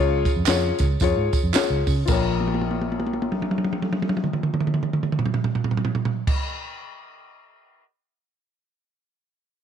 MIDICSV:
0, 0, Header, 1, 5, 480
1, 0, Start_track
1, 0, Key_signature, -5, "minor"
1, 0, Tempo, 537153
1, 1860, Time_signature, 4, 2, 24, 8
1, 8610, End_track
2, 0, Start_track
2, 0, Title_t, "Upright piano"
2, 0, Program_c, 0, 0
2, 0, Note_on_c, 0, 49, 75
2, 0, Note_on_c, 0, 65, 112
2, 0, Note_on_c, 0, 68, 95
2, 0, Note_on_c, 0, 73, 118
2, 252, Note_off_c, 0, 65, 0
2, 257, Note_off_c, 0, 68, 0
2, 259, Note_off_c, 0, 73, 0
2, 419, Note_on_c, 0, 65, 91
2, 433, Note_on_c, 0, 68, 79
2, 435, Note_on_c, 0, 73, 104
2, 674, Note_off_c, 0, 49, 0
2, 732, Note_off_c, 0, 65, 0
2, 739, Note_off_c, 0, 68, 0
2, 740, Note_off_c, 0, 73, 0
2, 908, Note_on_c, 0, 65, 88
2, 915, Note_on_c, 0, 68, 79
2, 925, Note_on_c, 0, 73, 101
2, 1217, Note_off_c, 0, 65, 0
2, 1220, Note_off_c, 0, 68, 0
2, 1225, Note_off_c, 0, 73, 0
2, 1370, Note_on_c, 0, 65, 84
2, 1380, Note_on_c, 0, 68, 78
2, 1387, Note_on_c, 0, 73, 95
2, 1688, Note_off_c, 0, 65, 0
2, 1693, Note_off_c, 0, 68, 0
2, 1697, Note_off_c, 0, 73, 0
2, 1836, Note_on_c, 0, 65, 76
2, 1864, Note_on_c, 0, 34, 75
2, 1865, Note_on_c, 0, 70, 74
2, 1897, Note_on_c, 0, 73, 82
2, 5633, Note_off_c, 0, 65, 0
2, 5647, Note_off_c, 0, 34, 0
2, 5647, Note_off_c, 0, 70, 0
2, 5663, Note_off_c, 0, 73, 0
2, 8610, End_track
3, 0, Start_track
3, 0, Title_t, "Fingered electric bass"
3, 0, Program_c, 1, 33
3, 0, Note_on_c, 1, 37, 105
3, 218, Note_off_c, 1, 37, 0
3, 326, Note_on_c, 1, 41, 84
3, 394, Note_off_c, 1, 41, 0
3, 423, Note_on_c, 1, 41, 89
3, 631, Note_off_c, 1, 41, 0
3, 715, Note_on_c, 1, 37, 89
3, 852, Note_off_c, 1, 37, 0
3, 902, Note_on_c, 1, 41, 89
3, 1005, Note_off_c, 1, 41, 0
3, 1042, Note_on_c, 1, 44, 88
3, 1147, Note_off_c, 1, 44, 0
3, 1283, Note_on_c, 1, 41, 84
3, 1352, Note_off_c, 1, 41, 0
3, 1521, Note_on_c, 1, 37, 98
3, 1626, Note_off_c, 1, 37, 0
3, 1669, Note_on_c, 1, 49, 90
3, 1808, Note_off_c, 1, 49, 0
3, 1861, Note_on_c, 1, 34, 93
3, 5645, Note_off_c, 1, 34, 0
3, 8610, End_track
4, 0, Start_track
4, 0, Title_t, "Muted fingered electric bass strokes"
4, 1381, Note_on_c, 9, 29, 44
4, 1470, Note_off_c, 9, 29, 0
4, 8610, End_track
5, 0, Start_track
5, 0, Title_t, "Drums"
5, 226, Note_on_c, 9, 54, 36
5, 227, Note_on_c, 9, 36, 104
5, 231, Note_on_c, 9, 42, 77
5, 315, Note_off_c, 9, 54, 0
5, 316, Note_off_c, 9, 36, 0
5, 320, Note_off_c, 9, 42, 0
5, 414, Note_on_c, 9, 39, 77
5, 414, Note_on_c, 9, 54, 83
5, 420, Note_on_c, 9, 42, 98
5, 428, Note_on_c, 9, 38, 115
5, 503, Note_off_c, 9, 39, 0
5, 503, Note_off_c, 9, 54, 0
5, 509, Note_off_c, 9, 42, 0
5, 517, Note_off_c, 9, 38, 0
5, 702, Note_on_c, 9, 42, 67
5, 704, Note_on_c, 9, 54, 59
5, 710, Note_on_c, 9, 38, 33
5, 716, Note_on_c, 9, 36, 89
5, 791, Note_off_c, 9, 42, 0
5, 793, Note_off_c, 9, 54, 0
5, 799, Note_off_c, 9, 38, 0
5, 805, Note_off_c, 9, 36, 0
5, 891, Note_on_c, 9, 54, 58
5, 902, Note_on_c, 9, 36, 97
5, 910, Note_on_c, 9, 42, 91
5, 981, Note_off_c, 9, 54, 0
5, 991, Note_off_c, 9, 36, 0
5, 999, Note_off_c, 9, 42, 0
5, 1186, Note_on_c, 9, 54, 56
5, 1190, Note_on_c, 9, 36, 90
5, 1196, Note_on_c, 9, 42, 65
5, 1275, Note_off_c, 9, 54, 0
5, 1279, Note_off_c, 9, 36, 0
5, 1285, Note_off_c, 9, 42, 0
5, 1376, Note_on_c, 9, 39, 91
5, 1376, Note_on_c, 9, 54, 94
5, 1392, Note_on_c, 9, 42, 93
5, 1393, Note_on_c, 9, 38, 110
5, 1466, Note_off_c, 9, 39, 0
5, 1466, Note_off_c, 9, 54, 0
5, 1481, Note_off_c, 9, 42, 0
5, 1483, Note_off_c, 9, 38, 0
5, 1669, Note_on_c, 9, 54, 51
5, 1671, Note_on_c, 9, 36, 83
5, 1676, Note_on_c, 9, 46, 57
5, 1758, Note_off_c, 9, 54, 0
5, 1760, Note_off_c, 9, 36, 0
5, 1765, Note_off_c, 9, 46, 0
5, 1855, Note_on_c, 9, 54, 82
5, 1859, Note_on_c, 9, 49, 97
5, 1862, Note_on_c, 9, 36, 104
5, 1944, Note_off_c, 9, 54, 0
5, 1949, Note_off_c, 9, 49, 0
5, 1951, Note_off_c, 9, 36, 0
5, 2149, Note_on_c, 9, 48, 51
5, 2213, Note_off_c, 9, 48, 0
5, 2213, Note_on_c, 9, 48, 48
5, 2273, Note_off_c, 9, 48, 0
5, 2273, Note_on_c, 9, 48, 53
5, 2337, Note_off_c, 9, 48, 0
5, 2337, Note_on_c, 9, 48, 53
5, 2420, Note_off_c, 9, 48, 0
5, 2420, Note_on_c, 9, 48, 49
5, 2509, Note_off_c, 9, 48, 0
5, 2515, Note_on_c, 9, 48, 51
5, 2605, Note_off_c, 9, 48, 0
5, 2608, Note_on_c, 9, 48, 49
5, 2678, Note_off_c, 9, 48, 0
5, 2678, Note_on_c, 9, 48, 57
5, 2739, Note_off_c, 9, 48, 0
5, 2739, Note_on_c, 9, 48, 51
5, 2801, Note_off_c, 9, 48, 0
5, 2801, Note_on_c, 9, 48, 53
5, 2878, Note_off_c, 9, 48, 0
5, 2878, Note_on_c, 9, 48, 61
5, 2966, Note_on_c, 9, 47, 55
5, 2967, Note_off_c, 9, 48, 0
5, 3055, Note_off_c, 9, 47, 0
5, 3058, Note_on_c, 9, 47, 58
5, 3138, Note_off_c, 9, 47, 0
5, 3138, Note_on_c, 9, 47, 58
5, 3199, Note_off_c, 9, 47, 0
5, 3199, Note_on_c, 9, 47, 54
5, 3257, Note_off_c, 9, 47, 0
5, 3257, Note_on_c, 9, 47, 62
5, 3330, Note_off_c, 9, 47, 0
5, 3330, Note_on_c, 9, 47, 60
5, 3417, Note_off_c, 9, 47, 0
5, 3417, Note_on_c, 9, 47, 61
5, 3506, Note_off_c, 9, 47, 0
5, 3508, Note_on_c, 9, 47, 66
5, 3596, Note_off_c, 9, 47, 0
5, 3596, Note_on_c, 9, 47, 69
5, 3658, Note_off_c, 9, 47, 0
5, 3658, Note_on_c, 9, 47, 69
5, 3725, Note_off_c, 9, 47, 0
5, 3725, Note_on_c, 9, 47, 62
5, 3786, Note_on_c, 9, 45, 64
5, 3815, Note_off_c, 9, 47, 0
5, 3873, Note_off_c, 9, 45, 0
5, 3873, Note_on_c, 9, 45, 68
5, 3961, Note_off_c, 9, 45, 0
5, 3961, Note_on_c, 9, 45, 74
5, 4051, Note_off_c, 9, 45, 0
5, 4055, Note_on_c, 9, 45, 77
5, 4115, Note_off_c, 9, 45, 0
5, 4115, Note_on_c, 9, 45, 77
5, 4175, Note_off_c, 9, 45, 0
5, 4175, Note_on_c, 9, 45, 77
5, 4235, Note_off_c, 9, 45, 0
5, 4235, Note_on_c, 9, 45, 80
5, 4314, Note_off_c, 9, 45, 0
5, 4314, Note_on_c, 9, 45, 75
5, 4404, Note_off_c, 9, 45, 0
5, 4409, Note_on_c, 9, 45, 76
5, 4495, Note_off_c, 9, 45, 0
5, 4495, Note_on_c, 9, 45, 75
5, 4578, Note_off_c, 9, 45, 0
5, 4578, Note_on_c, 9, 45, 78
5, 4636, Note_on_c, 9, 43, 84
5, 4668, Note_off_c, 9, 45, 0
5, 4696, Note_off_c, 9, 43, 0
5, 4696, Note_on_c, 9, 43, 81
5, 4771, Note_off_c, 9, 43, 0
5, 4771, Note_on_c, 9, 43, 85
5, 4861, Note_off_c, 9, 43, 0
5, 4864, Note_on_c, 9, 43, 88
5, 4953, Note_off_c, 9, 43, 0
5, 4961, Note_on_c, 9, 43, 81
5, 5043, Note_off_c, 9, 43, 0
5, 5043, Note_on_c, 9, 43, 82
5, 5104, Note_off_c, 9, 43, 0
5, 5104, Note_on_c, 9, 43, 78
5, 5159, Note_off_c, 9, 43, 0
5, 5159, Note_on_c, 9, 43, 89
5, 5224, Note_off_c, 9, 43, 0
5, 5224, Note_on_c, 9, 43, 85
5, 5314, Note_off_c, 9, 43, 0
5, 5316, Note_on_c, 9, 43, 85
5, 5405, Note_off_c, 9, 43, 0
5, 5409, Note_on_c, 9, 43, 96
5, 5498, Note_off_c, 9, 43, 0
5, 5606, Note_on_c, 9, 36, 101
5, 5606, Note_on_c, 9, 49, 102
5, 5695, Note_off_c, 9, 36, 0
5, 5695, Note_off_c, 9, 49, 0
5, 8610, End_track
0, 0, End_of_file